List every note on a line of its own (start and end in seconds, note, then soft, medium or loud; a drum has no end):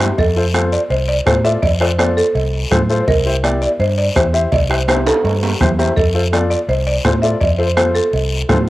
0.00 0.11 G2 medium
0.00 0.16 G5 medium
0.00 bombo rim medium
0.00 low timbale medium
0.00 short guiro medium
0.18 0.76 F2 medium
0.18 0.52 A4 medium
0.18 bombo low medium
0.18 cowbell loud
0.18 high conga soft
0.18 long guiro medium
0.36 0.43 F4 medium
0.36 0.43 A4 medium
0.36 0.43 C5 medium
0.54 0.79 F4 medium
0.54 0.80 A4 medium
0.54 0.80 C5 medium
0.54 bombo rim medium
0.54 high conga medium
0.54 short guiro medium
0.72 0.91 D5 medium
0.72 short guiro medium
0.90 1.19 C2 medium
0.90 0.99 C5 medium
0.90 cowbell medium
0.90 high conga soft
0.90 long guiro medium
1.08 1.17 D5 loud
1.26 1.56 A2 medium
1.26 1.33 F4 medium
1.26 1.33 A4 medium
1.26 1.45 C5 medium
1.26 1.33 C5 medium
1.26 bombo low medium
1.26 bombo rim medium
1.26 high conga medium
1.26 low timbale medium
1.26 short guiro medium
1.44 1.57 F4 medium
1.44 1.57 A4 medium
1.44 1.58 D5 medium
1.44 1.63 E5 loud
1.44 short guiro medium
1.62 2.21 F2 medium
1.62 1.81 D5 medium
1.62 bombo low medium
1.62 cowbell medium
1.62 high conga soft
1.62 long guiro medium
1.80 1.87 F4 medium
1.80 1.87 A4 medium
1.80 1.97 C5 medium
1.80 1.88 D5 medium
1.80 bombo rim medium
1.98 2.24 F4 medium
1.98 2.24 A4 medium
1.98 2.07 C5 medium
1.98 2.24 D5 medium
1.98 bombo rim medium
1.98 high conga medium
1.98 short guiro medium
2.17 2.85 A4 loud
2.17 short guiro medium
2.35 2.64 C2 medium
2.35 cowbell medium
2.35 high conga soft
2.35 long guiro medium
2.71 3.00 A2 medium
2.71 2.77 F4 medium
2.71 2.78 A4 medium
2.71 2.78 C5 medium
2.71 bombo low medium
2.71 bombo rim medium
2.71 high conga medium
2.71 low conga medium
2.71 short guiro medium
2.89 3.02 F4 medium
2.89 3.02 A4 medium
2.89 3.03 C5 medium
2.89 short guiro medium
3.00 3.07 C5 medium
3.07 3.65 C2 medium
3.07 3.41 A#4 medium
3.07 bombo low medium
3.07 cowbell loud
3.07 high conga soft
3.07 long guiro medium
3.25 3.32 E4 medium
3.25 3.32 G4 medium
3.25 3.32 C5 medium
3.43 3.69 E4 medium
3.43 3.69 G4 medium
3.43 3.69 D5 medium
3.43 bombo rim medium
3.43 high conga medium
3.43 short guiro medium
3.62 3.80 D5 medium
3.62 short guiro medium
3.80 4.09 G2 medium
3.80 3.97 C5 medium
3.80 cowbell medium
3.80 high conga soft
3.80 long guiro medium
3.98 4.06 D5 medium
4.15 4.45 E2 medium
4.15 4.22 E4 medium
4.15 4.22 G4 medium
4.15 4.22 C5 medium
4.15 4.24 C5 medium
4.15 bombo low medium
4.15 bombo rim medium
4.15 high conga medium
4.15 short guiro medium
4.33 4.46 E4 medium
4.33 4.46 G4 medium
4.33 4.47 C5 medium
4.33 4.42 E5 medium
4.33 short guiro medium
4.52 5.10 C2 medium
4.52 4.71 D5 medium
4.52 bombo low medium
4.52 cowbell loud
4.52 high conga soft
4.52 long guiro medium
4.69 4.76 E4 medium
4.69 4.76 G4 medium
4.69 4.77 C5 medium
4.69 4.87 C5 medium
4.69 bombo rim medium
4.88 5.13 E4 medium
4.88 5.14 G4 medium
4.88 4.96 C5 medium
4.88 5.14 C5 medium
4.88 bombo rim medium
4.88 high conga medium
4.88 high timbale medium
4.88 short guiro medium
5.06 5.75 A4 loud
5.06 high timbale medium
5.06 short guiro medium
5.24 5.53 G2 medium
5.24 cowbell medium
5.24 high conga soft
5.24 low timbale medium
5.24 long guiro medium
5.43 low timbale medium
5.60 5.90 E2 medium
5.60 5.67 E4 medium
5.60 5.67 G4 medium
5.60 5.67 C5 medium
5.60 bombo low medium
5.60 bombo rim medium
5.60 high conga medium
5.60 low conga medium
5.60 short guiro medium
5.78 5.91 E4 medium
5.78 5.91 G4 medium
5.78 5.91 C5 medium
5.78 low timbale medium
5.78 short guiro medium
5.96 6.55 F2 medium
5.96 6.30 A4 medium
5.96 bombo low medium
5.96 cowbell loud
5.96 high conga soft
5.96 long guiro medium
6.14 6.21 F4 medium
6.14 6.21 A4 medium
6.14 6.21 C5 medium
6.33 6.58 F4 medium
6.33 6.58 A4 medium
6.33 6.58 D5 medium
6.33 bombo rim medium
6.33 high conga medium
6.33 short guiro medium
6.51 6.68 D5 medium
6.51 short guiro medium
6.69 6.98 C2 medium
6.69 6.86 C5 medium
6.69 cowbell medium
6.69 high conga soft
6.69 long guiro medium
6.87 7.04 D5 medium
7.05 7.34 A2 medium
7.05 7.11 F4 medium
7.05 7.11 A4 medium
7.05 7.24 C5 medium
7.05 7.12 C5 medium
7.05 bombo low medium
7.05 bombo rim medium
7.05 high conga medium
7.05 low timbale medium
7.05 short guiro medium
7.22 7.36 F4 medium
7.22 7.36 A4 medium
7.22 7.36 D5 medium
7.22 7.41 E5 medium
7.22 short guiro medium
7.41 7.99 F2 medium
7.41 7.58 D5 medium
7.41 bombo low medium
7.41 cowbell medium
7.41 high conga soft
7.41 long guiro medium
7.58 7.65 F4 medium
7.58 7.66 A4 medium
7.58 7.76 C5 medium
7.58 7.66 C5 medium
7.77 8.02 F4 medium
7.77 8.02 A4 medium
7.77 7.94 C5 medium
7.77 8.03 C5 medium
7.77 bombo rim medium
7.77 high conga medium
7.77 short guiro medium
7.95 8.63 A4 loud
7.95 short guiro medium
8.13 8.42 C2 medium
8.13 cowbell medium
8.13 high conga soft
8.13 long guiro medium
8.49 8.69 A2 medium
8.49 8.56 F4 medium
8.49 8.56 A4 medium
8.49 8.56 C5 loud
8.49 bombo low medium
8.49 bombo rim medium
8.49 high conga medium
8.49 low conga medium
8.49 low timbale medium
8.49 short guiro medium